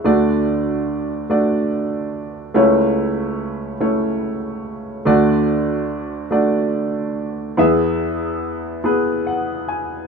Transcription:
<<
  \new Staff \with { instrumentName = "Upright piano" } { \time 6/8 \key d \lydian \tempo 4. = 48 << { r2. | r2. | r2. | r2 fis''8 gis''8 | } \\ { <a d' fis' d''>4. <a d' fis' d''>4. | <a cis' e' cis''>4. <a cis' e' cis''>4. | <a d' fis' d''>4. <a d' fis' d''>4. | <b e' gis' e''>4. <b e' gis' b'>4. | } >> }
  \new Staff \with { instrumentName = "Upright piano" } { \clef bass \time 6/8 \key d \lydian <d, d>2. | <cis, cis>2. | <d, d>2. | <e, e>2. | }
>>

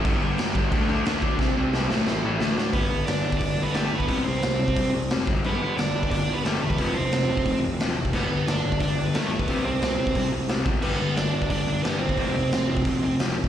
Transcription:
<<
  \new Staff \with { instrumentName = "Lead electric guitar" } { \time 4/4 \key d \mixolydian \tempo 4 = 178 r1 | r1 | \key g \mixolydian <b b'>4 <d' d''>4 <d' d''>8. <b b'>16 <a a'>8. <b b'>16~ | <b b'>8 <c' c''>2 r4. |
<b b'>4 <d' d''>4 <d' d''>8. <b b'>16 <a a'>8. <b b'>16~ | <b b'>8 <c' c''>2 r4. | <b b'>4 <d' d''>4 <d' d''>8. <b b'>16 <a a'>8. <b b'>16~ | <b b'>8 <c' c''>2 r4. |
<b b'>4 <d' d''>4 <d' d''>4 <b b'>8 <c' c''>8~ | <c' c''>2. r4 | }
  \new Staff \with { instrumentName = "Distorted electric guitar" } { \time 4/4 \key d \mixolydian <g, d g b d'>8 <g, d g b d'>8 <g, d g b d'>8 <g, d g b d'>8 <d fis a d'>8 <d fis a d'>8 <d fis a d'>8 <d fis a d'>8 | <c g c' e'>8 <c g c' e'>8 <c g c' e'>8 <a, e a c' e'>8 <a, e a c' e'>8 <a, e a c' e'>8 <d a d' fis'>8 <d a d' fis'>8 | \key g \mixolydian r1 | r1 |
r1 | r1 | r1 | r1 |
r1 | r1 | }
  \new Staff \with { instrumentName = "Overdriven electric guitar" } { \clef bass \time 4/4 \key d \mixolydian <g, d g>8 <g, d g>8 <g, d g>8 <g, d g>8 <d a d'>8 <d a d'>8 <d a d'>8 <d a d'>8 | <c g c'>8 <c g c'>8 <c g c'>8 <a, e a>8 <a, e a>8 <a, e a>8 <d a d'>8 <d a d'>8 | \key g \mixolydian r1 | r1 |
r1 | r1 | r1 | r1 |
r1 | r1 | }
  \new Staff \with { instrumentName = "Overdriven electric guitar" } { \clef bass \time 4/4 \key d \mixolydian <g, d g>8 <g, d g>8 <g, d g>8 <g, d g>8 <d a d'>8 <d a d'>8 <d a d'>8 <d a d'>8 | <c g c'>8 <c g c'>8 <c g c'>8 <a, e a>8 <a, e a>8 <a, e a>8 <d a d'>8 <d a d'>8 | \key g \mixolydian <g, d g>8 <g, d>8 <g, d>8 <g, d>8 <g, d>8 <g, d>8 <g, d g>8 <g, d>8 | <c g c'>8 <c g>8 <c g>8 <c g>8 <c g>8 <c g>8 <c g c'>8 <g, d g>8 |
<g, d g>8 <g, d>8 <g, d>8 <g, d>8 <g, d>8 <g, d>8 <g, d g>8 <g, d>8 | <f, c f>8 <f, c>8 <f, c>8 <f, c>8 <f, c>8 <f, c>8 <f, c f>8 <f, c>8 | <g, d g>8 <g, d>8 <g, d>8 <g, d>8 <g, d>8 <g, d>8 <g, d g>8 <g, d>8 | <c g c'>8 <c g>8 <c g>8 <c g>8 <c g>8 <c g>8 <c g c'>8 <g, d g>8 |
<g, d g>8 <g, d>8 <g, d>8 <g, d>8 <g, d>8 <g, d>8 <g, d g>8 <g, d>8 | <f, c f>8 <f, c>8 <f, c>8 <f, c>8 <f, c>8 <f, c>8 <f, c f>8 <f, c>8 | }
  \new Staff \with { instrumentName = "Picked electric bass" } { \clef bass \time 4/4 \key d \mixolydian g,,8 g,,8 g,,4 d,4 d,8 d8 | c,8 c,8 c,8 a,,8 a,,8 a,,8 d,8 a,8 | \key g \mixolydian g,,8 g,,8 g,,8 g,,8 g,,8 g,,8 g,,8 g,,8 | c,8 c,8 c,8 c,8 c,8 c,8 f,,8 g,,8 |
g,,8 g,,8 g,,8 g,,8 g,,8 g,,8 g,,8 e,,8 | f,,8 f,,8 f,,8 f,,8 f,,8 f,,8 f,,8 f,,8 | g,,8 g,,8 g,,8 g,,8 g,,8 g,,8 g,,8 g,,8 | c,8 c,8 c,8 c,8 c,8 c,8 c,8 g,,8 |
g,,8 g,,8 g,,8 g,,8 g,,8 g,,8 g,,8 g,,8 | f,,8 f,,8 f,,8 f,,8 f,,8 f,,8 f,,8 f,,8 | }
  \new DrumStaff \with { instrumentName = "Drums" } \drummode { \time 4/4 <cymc bd>8 cymc8 <cymc sn>8 <cymc bd>8 <cymc bd>8 cymc8 <cymc sn>8 <cymc bd>8 | <bd sn>4 sn8 sn8 sn4 sn8 sn8 | <hho bd>4 <hho sn>8. bd16 <hho bd>4 <hho sn>8. bd16 | <hho bd>4 <hho sn>8. bd16 <hho bd>4 <hho sn>8 bd8 |
cymc4 <hho sn>8. bd16 <hho bd>4 <hho sn>8. bd16 | <hho bd>4 <hho sn>8. bd16 <hho bd>4 <hho sn>8. bd16 | <cymc bd>4 <hho sn>8. bd16 <hho bd>4 <hho sn>8. bd16 | <hho bd>4 <hho sn>8. bd16 <hho bd>4 <hho sn>8 bd8 |
cymc4 <hho sn>8. bd16 <hho bd>4 <hho sn>8. bd16 | <hho bd>4 <hho sn>8. bd16 <hho bd>4 <hho sn>8. bd16 | }
>>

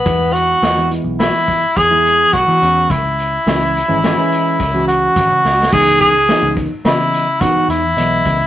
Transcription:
<<
  \new Staff \with { instrumentName = "Tenor saxophone" } { \time 5/4 \key cis \minor \tempo 4 = 106 b8 fis'4 r8 e'4 gis'4 fis'4 | e'2.~ e'8 fis'4. | gis'8 gis'4 r8 e'4 fis'8 e'4. | }
  \new Staff \with { instrumentName = "Tine electric piano" } { \time 5/4 \key cis \minor <e gis b e'>4 r16 <e gis b e'>16 <e gis b e'>4~ <e gis b e'>16 r8 <e gis b e'>8. r16 <e gis b fis'>16 <e gis b cis'>8 | r4 <e gis cis' e'>8 r16 <e gis cis' e'>16 <e gis cis' e'>16 <e gis cis' e'>8. r16 <e gis cis' fis'>4~ <e gis cis' fis'>16 r8 | <e gis b dis'>8. r16 <e gis b dis'>8. r16 <e gis b dis''>8. r16 <e gis b dis'>8. r16 <e gis b dis''>8. r16 | }
  \new Staff \with { instrumentName = "Picked electric bass" } { \clef bass \time 5/4 \key cis \minor e,4 e,8. b,,8 r8. e,4 b,,16 e16 e,8 | cis,4 cis,8. gis,,8 r8. cis,4 gis,,16 cis16 cis,8 | cis,4~ cis,16 cis,8 r16 cis4. e,8 b,,8 cis,8 | }
  \new DrumStaff \with { instrumentName = "Drums" } \drummode { \time 5/4 <hh bd>8 hh8 <hh sn>8 hh8 <hh sn>8 <hh bd>8 <hh bd>8 hh8 <hh bd>8 hh8 | <hh bd>8 hh8 <hh sn>8 hh8 <hh sn>8 hh8 <hh bd>8 hh8 \tuplet 3/2 { <hh bd sn>16 r16 r16 sn16 r16 sn16 } | <cymc bd>8 <hh bd>8 <hh sn>8 <hh bd>8 <hh sn>8 hh8 <hh bd>8 hh8 hh8 <hh bd>8 | }
>>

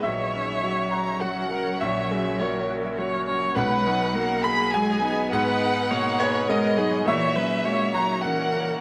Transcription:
<<
  \new Staff \with { instrumentName = "Violin section" } { \time 3/4 \key fis \mixolydian \tempo 4 = 102 e''4. ais''8 fis''4 | e''4 cis''8 r4. | fis''4. b''8 gis''4 | fis''4. cis''8 dis''4 |
e''4. ais''8 fis''4 | }
  \new Staff \with { instrumentName = "Harp" } { \time 3/4 \key fis \mixolydian <fis' fis''>16 cis''16 e''16 e''16 fis'8. e''16 fis'16 ais'16 ais'8 | fis'16 cis''16 e''16 e''16 fis'8. e''16 fis'16 ais'16 ais'8 | b''16 fis''16 gis''16 gis''4 gis''8 dis''16 dis''8 | gis'16 dis''16 fis''16 fis''16 gis'8. fis''16 gis'16 b'16 b'8 |
fis'16 cis''16 e''16 e''16 fis'8. e''16 fis'16 ais'16 ais'8 | }
  \new Staff \with { instrumentName = "Viola" } { \time 3/4 \key fis \mixolydian cis''2 fis'8 ais'8 | cis''8 gis'8 ais'4 cis''8 cis''8 | b'4 ais'8 gis'4. | b'4 cis''8 b'8 ais'8 gis'8 |
cis''8 b'8 cis''4 ais'4 | }
  \new Staff \with { instrumentName = "Ambient pad" } { \time 3/4 \key fis \mixolydian <cis' fis' cis''>2.~ | <cis' fis' cis''>2. | <dis' gis' dis''>2.~ | <dis' gis' dis''>2. |
<cis' fis' cis''>2. | }
  \new Staff \with { instrumentName = "Grand piano" } { \time 3/4 \key fis \mixolydian e''4. ais''8 fis''4 | e''4 cis''8 r4. | fis''4. b''8 gis''4 | fis''4. cis''8 dis''4 |
e''4. ais''8 fis''4 | }
  \new Staff \with { instrumentName = "Grand piano" } { \time 3/4 \key fis \mixolydian ais,,8 cis'8 fis8 fis'8 fis8 cis'8 | ais,,8 fis8 ais,8 fis'8 fis8 cis'8 | b,,8 dis'8 fis8 gis'8 fis8 dis'8 | gis,8 dis'8 b,8 gis'8 b8 dis'8 |
ais,8 cis'8 ais8 fis'8 cis'8 ais8 | }
  \new Staff \with { instrumentName = "Cello" } { \clef bass \time 3/4 \key fis \mixolydian fis2.~ | fis2. | gis8 fis8 ais4 gis8 b8~ | b4 ais4 gis8 fis8 |
e8 fis8 gis8 fis8 e4 | }
>>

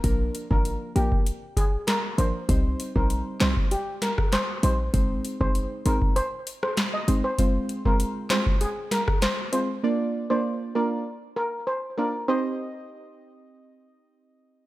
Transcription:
<<
  \new Staff \with { instrumentName = "Steel pan" } { \time 4/4 \key c \minor \tempo 4 = 98 r8. bes'16 r8 g'16 r8. aes'16 r16 bes'16 r16 c''16 r16 | r8. bes'16 r8 c''16 r16 g'16 r16 bes'16 r16 c''16 r16 c''16 r16 | r8. c''16 r8 bes'16 r16 c''16 r8 c''16 r16 ees''16 r16 c''16 | r8. bes'16 r8 c''16 r16 aes'16 r16 bes'16 r16 c''16 r16 c''16 r16 |
r8. c''16 r8 bes'16 r8. bes'16 r16 c''16 r16 bes'16 r16 | c''2. r4 | }
  \new Staff \with { instrumentName = "Synth stab" } { \time 4/4 \key c \minor <f bes d' bes'>8. <f bes d' bes'>8. <f bes d' bes'>8 r4. <f bes d' bes'>16 r16 | <g c' ees' c''>8. <g c' ees' c''>8. <g c' ees' c''>8 r4. <g c' ees' c''>16 r16 | <aes c' ees' c''>8. <aes c' ees' c''>8. <aes c' ees' c''>8 r4. <aes c' ees' c''>16 r16 | <aes c' f' c''>8. <aes c' f' c''>8. <aes c' f' c''>8 r4. <aes c' f' c''>16 r16 |
<bes d' f' d''>8. <bes d' f' d''>8. <bes d' f' d''>8 r4. <bes d' f' d''>16 r16 | <c' ees' g' ees''>1 | }
  \new Staff \with { instrumentName = "808-style bass" } { \clef bass \time 4/4 \key c \minor bes,,8 r16 aes,,8 r16 bes,,16 r4. r16 aes,,16 r16 | c,8 r16 bes,,8 r16 c,16 r4. r16 bes,,8 | aes,,8 r16 g,,8 r16 aes,,16 r4. r16 g,,16 r16 | r1 |
r1 | r1 | }
  \new DrumStaff \with { instrumentName = "Drums" } \drummode { \time 4/4 <hh bd>8 hh16 bd16 hh8 hh16 bd16 hh8 <hh bd>8 <hc hh sn>8 hh8 | <hh bd>8 hh16 bd16 hh8 <hc hh sn>16 bd16 hh8 <hh sn>16 <bd ss>16 <hc hh sn>8 hh8 | <hh bd>8 hh16 bd16 hh8 hh16 bd16 hh8 hh16 ss16 <hc hh sn>8 hh8 | <hh bd>8 hh16 bd16 hh8 <hc hh sn>16 bd16 hh8 <hh sn>16 <bd ss>16 <hc hh sn>8 hh8 |
r4 r4 r4 r4 | r4 r4 r4 r4 | }
>>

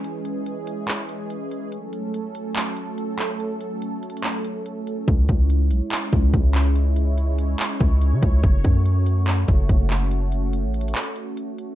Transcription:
<<
  \new Staff \with { instrumentName = "Analog synth pad" } { \time 4/4 \key fis \dorian \tempo 4 = 143 << { <gis gis'>1 | <a a'>1~ | <a a'>1 | cis''1~ |
cis''1~ | cis''1~ | cis''1 | } \\ { <e cis'>1 | <fis cis'>1~ | <fis cis'>1 | <gis e'>1~ |
<gis e'>1 | <a fis'>1~ | <a fis'>1 | } >> }
  \new Staff \with { instrumentName = "808-style bass" } { \clef bass \time 4/4 \key fis \dorian r1 | r1 | r1 | cis,8 cis,4 b,,16 r8. cis,8 cis,4~ |
cis,2 r8 cis,8. cis16 cis,8 | fis,,8 fis,2 fis,,8 fis,,4~ | fis,,4~ fis,,16 a,,8. r2 | }
  \new DrumStaff \with { instrumentName = "Drums" } \drummode { \time 4/4 hh8 hh8 hh8 hh8 <hc hh>8 hh8 hh8 hh8 | hh8 hh8 hh8 hh8 <hc hh>8 hh8 hh8 <hc hh>8 | hh8 hh8 \tuplet 3/2 { hh16 r16 r16 <hh hho>16 hh16 hh16 } <hc hh>8 hh8 hh8 hh8 | <hh bd>8 <hh bd>8 hh8 hh8 <hc hh>8 <hh bd>8 <hh bd>8 <hc hh>8 |
hh8 hh8 hh8 hh8 <hc hh>8 <hh bd>8 hh8 <hh bd>8 | <hh bd>8 <hh bd>8 hh8 hh8 <hc hh>8 <hh bd>8 <hh bd>8 <hc hh>8 | hh8 hh8 \tuplet 3/2 { hh16 r16 r16 <hh hho>16 hh16 hh16 } <hc hh>8 hh8 hh8 hh8 | }
>>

